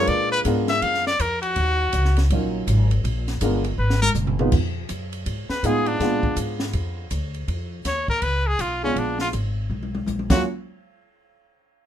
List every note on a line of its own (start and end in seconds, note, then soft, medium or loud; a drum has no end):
0.00 0.43 G#3 medium
0.00 0.43 D4 medium
0.00 0.43 F4 medium
0.00 0.43 A#4 medium
0.00 0.43 B4 medium
0.07 0.44 A#2 medium
0.07 0.32 D5 medium
0.07 kick soft
0.07 ride medium
0.32 0.40 B4 medium
0.45 0.81 G#2 medium
0.45 1.01 G#3 medium
0.45 1.01 B3 medium
0.45 1.01 D4 medium
0.45 1.01 F4 medium
0.45 1.01 A#4 medium
0.45 kick soft
0.45 hi-hat pedal medium
0.45 ride medium
0.68 0.84 E5 medium
0.68 snare soft
0.68 ride soft
0.82 1.18 F#2 medium
0.82 1.06 F5 medium
0.82 kick soft
0.82 ride medium
0.95 snare soft
1.07 1.22 D5 medium
1.07 snare soft
1.19 1.55 F2 medium
1.19 1.41 A#4 medium
1.19 kick soft
1.19 hi-hat pedal medium
1.19 ride medium
1.42 2.26 F#4 medium
1.42 ride soft
1.56 1.92 D#2 medium
1.56 kick soft
1.56 ride medium
1.93 2.29 C#2 medium
1.93 kick soft
1.93 hi-hat pedal medium
1.93 ride medium
2.05 snare soft
2.17 snare soft
2.17 ride soft
2.30 2.66 A#1 medium
2.30 2.87 F#3 soft
2.30 2.87 C#4 soft
2.30 2.87 D#4 soft
2.30 2.87 F4 soft
2.30 2.87 A#4 medium
2.30 kick soft
2.30 ride medium
2.67 3.03 G#1 medium
2.67 kick soft
2.67 hi-hat pedal soft
2.67 ride medium
2.91 ride soft
3.04 3.40 A#1 medium
3.04 kick soft
3.04 ride medium
3.28 snare soft
3.28 ride soft
3.41 3.77 G1 medium
3.41 3.62 G#3 medium
3.41 3.63 B3 medium
3.41 3.63 D4 medium
3.41 3.63 F4 medium
3.41 3.63 A#4 medium
3.41 kick soft
3.41 hi-hat pedal medium
3.41 ride medium
3.64 ride soft
3.78 4.14 G#1 medium
3.78 4.00 B4 medium
3.90 snare soft
4.02 4.10 A#4 medium
4.02 high tom medium
4.15 4.51 F#1 medium
4.15 floor tom medium
4.15 hi-hat pedal medium
4.27 floor tom medium
4.39 4.51 G#3 medium
4.39 4.52 B3 medium
4.39 4.52 D#4 medium
4.39 4.52 F4 medium
4.39 4.52 B4 medium
4.39 floor tom medium
4.52 4.88 F2 medium
4.52 kick medium
4.52 crash medium
4.89 5.25 F#2 medium
4.89 kick soft
4.89 hi-hat pedal soft
4.89 ride medium
5.13 ride soft
5.26 5.48 G#2 medium
5.26 kick soft
5.26 ride medium
5.49 5.68 B4 medium
5.49 muted upright bass stroke soft
5.49 snare soft
5.63 5.99 A2 medium
5.63 5.99 G#3 medium
5.63 5.99 B3 medium
5.63 6.01 D#4 medium
5.63 6.00 F4 medium
5.63 5.89 G#4 medium
5.63 kick soft
5.63 hi-hat pedal soft
5.63 ride medium
5.86 6.38 D4 medium
5.86 ride soft
6.00 6.36 A#2 medium
6.00 7.03 G#3 medium
6.00 7.03 B3 medium
6.00 7.03 D4 medium
6.00 7.04 F4 medium
6.00 kick soft
6.00 snare soft
6.00 ride soft
6.23 kick soft
6.37 6.73 G#2 medium
6.37 kick soft
6.37 hi-hat pedal medium
6.37 ride medium
6.60 snare medium
6.73 7.10 F2 medium
6.73 kick soft
6.73 ride soft
7.11 7.47 D2 medium
7.11 kick soft
7.11 hi-hat pedal soft
7.11 ride medium
7.34 ride soft
7.48 7.84 F2 medium
7.48 kick soft
7.48 ride soft
7.85 8.21 D#2 medium
7.85 8.08 C#5 medium
7.85 kick soft
7.85 snare soft
7.85 hi-hat pedal medium
7.85 ride medium
8.08 8.24 A#4 medium
8.08 kick soft
8.22 8.58 C#2 medium
8.22 8.49 B4 medium
8.22 kick soft
8.22 ride medium
8.47 8.62 G#4 medium
8.59 8.95 B1 medium
8.59 8.83 F4 medium
8.59 kick soft
8.59 hi-hat pedal soft
8.59 ride medium
8.83 9.31 G#3 medium
8.83 9.31 B3 soft
8.83 9.00 C#4 medium
8.83 9.31 D4 soft
8.83 9.31 F4 medium
8.96 9.32 A#1 medium
8.96 9.20 D4 medium
8.96 kick soft
8.96 ride soft
9.19 9.29 F4 medium
9.19 snare soft
9.33 9.69 G#1 medium
9.33 kick soft
9.33 hi-hat pedal soft
9.33 ride medium
9.70 10.06 B1 medium
9.70 high tom soft
9.83 high tom soft
9.95 high tom medium
10.06 10.29 A#1 medium
10.06 hi-hat pedal soft
10.06 high tom medium
10.19 high tom medium
10.30 10.43 D#2 medium
10.30 10.42 F#3 medium
10.30 10.43 A#3 medium
10.30 10.43 C#4 soft
10.30 10.43 F4 medium
10.30 10.43 F#4 medium
10.30 kick medium
10.30 snare medium
10.30 crash medium